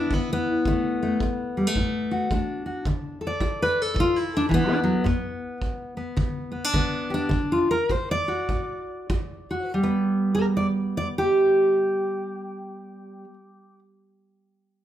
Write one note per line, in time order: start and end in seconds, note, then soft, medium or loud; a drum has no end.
0.00 0.12 B3 soft
0.00 0.13 D4 medium
0.00 0.49 E4 medium
0.11 0.63 D3 medium
0.11 0.30 B3 medium
0.11 kick medium
0.33 2.32 B3 medium
0.65 1.18 D3 medium
0.65 1.02 A3 soft
0.65 kick medium
1.03 1.22 A3 soft
1.20 1.56 A3 medium
1.20 kick medium
1.57 1.67 G3 soft
1.67 2.30 A3 soft
1.76 2.27 A2 medium
1.76 kick medium
2.11 2.65 F#4 soft
2.31 2.82 A3 medium
2.31 3.21 D4 soft
2.31 kick medium
2.66 2.84 F#4 soft
2.85 3.38 D3 medium
2.85 kick medium
3.21 3.60 A4 soft
3.27 4.16 D5 medium
3.40 3.93 F#4 medium
3.40 kick medium
3.62 3.82 B4 medium
3.82 4.53 A4 loud
3.94 4.47 A2 medium
3.94 kick medium
4.00 4.17 F4 medium
4.16 4.90 E4 medium
4.37 4.49 D4 medium
4.49 4.72 E3 medium
4.49 kick medium
4.54 5.04 B3 loud
4.72 4.83 D4 medium
4.84 5.06 F#3 medium
5.04 5.57 G2 medium
5.04 5.96 B3 soft
5.04 kick medium
5.62 kick medium
5.97 6.50 B3 soft
6.17 6.70 D3 medium
6.17 kick medium
6.52 6.64 B3 soft
6.64 7.13 D4 soft
6.74 7.28 D3 medium
6.74 7.30 B3 soft
6.74 kick medium
7.10 7.70 D4 medium
7.10 7.30 G4 soft
7.29 7.85 D3 medium
7.29 kick medium
7.52 7.71 F4 medium
7.71 7.90 A#4 medium
7.90 8.27 F#4 medium
7.90 8.10 C5 medium
7.90 kick medium
8.11 9.72 D5 medium
8.28 9.08 F#4 soft
8.49 9.06 A2 medium
8.49 kick medium
9.10 9.49 F#4 medium
9.10 kick medium
9.51 9.70 F#4 soft
9.74 13.24 G3 medium
9.83 13.33 B3 medium
10.35 10.45 A#4 medium
10.57 10.66 D5 medium
10.97 11.07 D5 medium
11.18 13.79 G4 medium